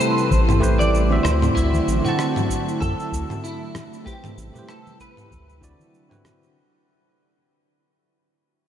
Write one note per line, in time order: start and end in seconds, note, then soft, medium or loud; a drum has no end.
0.00 1.22 C3 medium
0.00 1.22 G3 medium
0.00 0.60 A3 medium
0.00 5.27 A3 medium
0.00 0.61 C4 medium
0.00 5.27 E4 medium
0.00 0.61 G4 medium
0.00 0.60 A4 medium
0.00 0.62 B4 medium
0.00 0.63 C5 medium
0.00 0.75 C5 loud
0.00 cabasa medium
0.18 cabasa soft
0.31 1.20 A1 medium
0.31 kick loud
0.31 high conga medium
0.31 cabasa soft
0.49 mid tom medium
0.49 cabasa soft
0.60 1.06 A3 loud
0.60 1.06 G4 medium
0.60 1.07 B4 medium
0.60 1.07 C5 loud
0.60 kick loud
0.60 cabasa medium
0.79 1.23 D5 loud
0.79 high conga medium
0.79 cabasa soft
0.95 cabasa soft
1.09 1.52 D3 loud
1.09 1.52 C4 medium
1.09 1.53 F#4 medium
1.09 1.53 E5 loud
1.23 1.50 D2 medium
1.23 4.03 D3 medium
1.23 4.03 F#3 medium
1.23 4.03 C4 medium
1.23 1.56 C5 loud
1.23 cross-stick medium
1.23 high conga medium
1.23 low conga medium
1.23 cabasa medium
1.42 mid tom medium
1.42 cabasa soft
1.54 1.81 D2 loud
1.54 2.00 D3 medium
1.54 2.00 C4 medium
1.54 2.04 E4 loud
1.54 2.01 F#4 medium
1.54 2.01 E5 medium
1.54 kick loud
1.54 cabasa soft
1.74 high conga medium
1.74 cabasa soft
1.88 2.01 A1 medium
1.88 cabasa medium
2.02 4.01 D3 medium
2.02 4.03 C4 medium
2.02 2.83 F#4 medium
2.02 low conga medium
2.02 cabasa soft
2.06 4.04 F#4 medium
2.06 4.05 A5 loud
2.19 cross-stick medium
2.19 cabasa soft
2.36 mid tom medium
2.36 high conga medium
2.36 cabasa soft
2.50 kick medium
2.50 cabasa medium
2.69 cabasa soft
2.80 2.95 F#2 medium
2.80 3.45 A4 loud
2.80 kick loud
2.80 high conga medium
2.80 cabasa soft
3.00 cabasa soft
3.12 3.26 D2 medium
3.12 kick loud
3.12 cabasa medium
3.30 mid tom medium
3.30 high conga medium
3.30 cabasa soft
3.44 4.05 E4 medium
3.44 cabasa soft
3.75 cross-stick medium
3.75 high conga medium
3.75 low conga medium
3.75 cabasa medium
3.93 cabasa soft
4.04 6.54 C3 medium
4.04 5.31 G3 medium
4.04 4.50 A3 medium
4.04 4.50 G4 medium
4.04 4.70 G4 medium
4.04 4.51 B4 medium
4.04 4.51 C5 medium
4.04 kick loud
4.04 cabasa soft
4.24 mid tom medium
4.24 high conga medium
4.24 cabasa soft
4.38 4.51 A1 medium
4.38 cabasa medium
4.52 5.28 A3 medium
4.52 5.29 G4 medium
4.52 low conga medium
4.52 cabasa soft
4.56 5.30 B4 medium
4.56 5.31 C5 medium
4.69 5.00 A4 medium
4.69 cross-stick medium
4.69 cabasa soft
4.87 high conga medium
4.87 cabasa soft
5.00 6.21 B4 medium
5.00 kick medium
5.00 cabasa medium
5.17 mid tom medium
5.17 cabasa soft
5.31 5.62 D2 medium
5.31 6.55 F#3 medium
5.31 6.55 D4 medium
5.31 6.55 E4 medium
5.31 kick loud
5.31 high conga medium
5.31 cabasa soft
5.49 cabasa soft
5.60 5.76 D2 medium
5.60 6.06 D3 loud
5.60 6.06 C4 medium
5.60 6.07 E4 medium
5.60 6.07 F#4 loud
5.60 6.08 D5 loud
5.60 kick loud
5.60 cabasa medium
5.80 high conga medium
5.80 cabasa soft
5.94 cabasa soft
6.09 6.52 D3 loud
6.09 6.52 C4 medium
6.09 6.52 E4 medium
6.09 6.53 F#4 medium
6.09 6.53 B4 loud
6.09 mid tom medium
6.09 cabasa soft
6.25 cross-stick medium
6.25 high conga medium
6.25 low conga medium
6.25 cabasa medium
6.43 cabasa soft